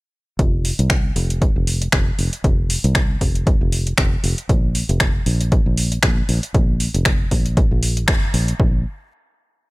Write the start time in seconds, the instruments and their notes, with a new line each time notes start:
0.39 fingered electric bass F1, kick, closed hi-hat
0.65 open hi-hat
0.79 fingered electric bass C2, closed hi-hat
0.90 finger snap, kick, closed hi-hat
1.16 fingered electric bass F1, open hi-hat
1.30 closed hi-hat
1.42 kick, closed hi-hat
1.56 fingered electric bass F1
1.67 open hi-hat
1.82 closed hi-hat
1.92 fingered electric bass F1, finger snap, kick, closed hi-hat
2.19 fingered electric bass F1, open hi-hat
2.33 closed hi-hat
2.44 fingered electric bass F1, kick, closed hi-hat
2.70 open hi-hat
2.84 fingered electric bass C2, closed hi-hat
2.95 finger snap, kick, closed hi-hat
3.21 fingered electric bass F1, kick, open hi-hat
3.35 closed hi-hat
3.47 kick, closed hi-hat
3.61 fingered electric bass F1
3.72 open hi-hat
3.87 closed hi-hat
3.98 fingered electric bass F1, finger snap, kick, closed hi-hat
4.24 fingered electric bass F1, open hi-hat
4.38 closed hi-hat
4.49 fingered electric bass A#1, kick, closed hi-hat
4.75 open hi-hat
4.89 fingered electric bass F1, closed hi-hat
5.00 finger snap, kick, closed hi-hat
5.26 fingered electric bass A#1, open hi-hat
5.41 closed hi-hat
5.52 kick, closed hi-hat
5.66 fingered electric bass A#1
5.77 open hi-hat
5.92 closed hi-hat
6.03 fingered electric bass A#1, finger snap, kick, closed hi-hat
6.29 fingered electric bass A#1, open hi-hat
6.43 closed hi-hat
6.54 fingered electric bass A#1, kick, closed hi-hat
6.80 open hi-hat
6.94 fingered electric bass F1, closed hi-hat
7.05 finger snap, kick, closed hi-hat
7.31 fingered electric bass A#1, kick, open hi-hat
7.46 closed hi-hat
7.57 kick, closed hi-hat
7.71 fingered electric bass A#1
7.83 open hi-hat
7.97 closed hi-hat
8.08 fingered electric bass F1, finger snap, kick, closed hi-hat
8.34 fingered electric bass A#1, open hi-hat
8.48 closed hi-hat
8.60 fingered electric bass A#1, kick